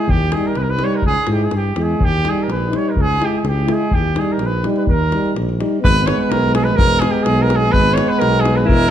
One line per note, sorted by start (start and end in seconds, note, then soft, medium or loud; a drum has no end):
0.00 0.11 G#4 medium
0.07 0.33 D#2 medium
0.07 0.34 G4 loud
0.07 davul low medium
0.30 0.55 G3 medium
0.30 0.54 D#4 medium
0.30 0.48 G#4 medium
0.30 davul high medium
0.45 0.58 A#4 medium
0.45 davul high soft
0.55 0.82 C2 medium
0.55 0.63 B4 medium
0.55 davul high soft
0.62 0.71 A#4 medium
0.70 0.86 B4 medium
0.78 1.03 G3 medium
0.78 1.02 D#4 medium
0.78 davul high medium
0.84 0.97 C#5 medium
0.91 davul high soft
0.95 1.05 A#4 medium
1.02 1.17 C#2 medium
1.02 davul low medium
1.06 1.27 G#4 loud
1.15 davul high soft
1.26 1.49 G#2 medium
1.26 1.52 G#3 soft
1.26 1.50 E4 medium
1.26 davul high medium
1.32 1.45 G4 medium
1.40 davul high soft
1.44 1.53 G#4 medium
1.51 1.73 G2 medium
1.51 davul high medium
1.56 1.84 G4 medium
1.75 1.97 E2 medium
1.75 2.00 G#3 medium
1.75 1.99 E4 soft
1.75 davul high medium
1.82 2.06 G#4 medium
1.99 2.25 D#2 medium
1.99 davul low medium
2.04 2.30 G4 loud
2.23 2.48 G3 medium
2.23 2.47 D#4 soft
2.23 davul high medium
2.29 2.44 G#4 medium
2.38 davul high soft
2.43 2.51 A#4 medium
2.47 2.74 A#1 medium
2.47 2.78 B4 medium
2.47 davul high medium
2.68 2.96 G3 medium
2.68 2.94 D#4 medium
2.73 2.91 C#5 medium
2.73 davul high medium
2.85 3.02 A#4 medium
2.85 davul high soft
2.95 3.22 C#2 medium
2.95 davul low medium
3.01 3.26 G#4 loud
3.18 3.43 G#3 medium
3.18 3.43 E4 medium
3.18 davul high medium
3.24 3.40 G4 medium
3.35 3.47 G#4 medium
3.35 davul high soft
3.43 3.70 C#2 medium
3.43 davul high medium
3.49 3.74 G4 medium
3.64 3.90 E4 medium
3.68 3.92 G#3 medium
3.68 davul high medium
3.73 3.95 G#4 medium
3.81 davul high soft
3.91 4.18 D#2 medium
3.91 4.20 G4 loud
3.91 davul low medium
4.15 4.40 G3 medium
4.15 4.39 D#4 medium
4.15 davul high medium
4.19 4.33 G#4 medium
4.32 4.47 A#4 medium
4.39 4.65 A#1 medium
4.39 davul high medium
4.46 4.67 B4 medium
4.62 4.88 G3 medium
4.62 4.87 D#4 medium
4.62 davul high medium
4.76 4.82 B4 medium
4.76 davul high soft
4.86 5.13 D#2 medium
4.86 5.33 A#4 loud
4.86 davul low medium
5.00 davul high soft
5.10 5.35 G3 medium
5.10 5.34 D#4 soft
5.10 davul high medium
5.26 davul high soft
5.35 5.61 A#1 medium
5.35 davul high medium
5.49 davul high soft
5.59 5.82 G3 medium
5.59 5.80 D#4 medium
5.59 davul high medium
5.81 6.10 G#1 loud
5.81 6.74 G#3 medium
5.81 6.74 B3 medium
5.81 6.08 B4 loud
5.81 davul low medium
6.06 6.19 C#5 loud
6.06 davul high medium
6.20 6.31 B4 medium
6.30 6.79 B1 medium
6.30 6.54 A#4 loud
6.30 davul high medium
6.55 6.65 G#4 medium
6.55 davul high medium
6.64 6.77 B4 loud
6.64 davul high soft
6.76 7.04 E1 medium
6.76 7.72 G#3 medium
6.76 7.71 B3 medium
6.76 7.01 A#4 loud
6.76 davul low medium
6.99 7.12 G#4 loud
6.99 davul high medium
7.10 7.24 G4 medium
7.23 7.74 B1 medium
7.23 7.43 G#4 loud
7.23 davul high medium
7.42 7.57 A#4 loud
7.50 davul high medium
7.56 7.73 G#4 loud
7.62 davul high soft
7.72 7.99 G#1 medium
7.72 8.67 G#3 medium
7.72 8.66 B3 medium
7.72 7.95 B4 loud
7.72 davul low medium
7.94 8.10 C#5 loud
7.94 davul high medium
8.09 8.20 B4 medium
8.19 8.71 B1 medium
8.19 8.42 A#4 loud
8.19 davul high medium
8.40 8.58 G#4 loud
8.45 davul high medium
8.56 8.68 B4 medium
8.56 davul high soft
8.65 8.91 G#3 medium
8.65 8.91 B3 medium
8.65 8.91 E4 medium
8.65 8.91 A#4 loud
8.65 davul low medium
8.69 8.91 E1 loud
8.82 davul high soft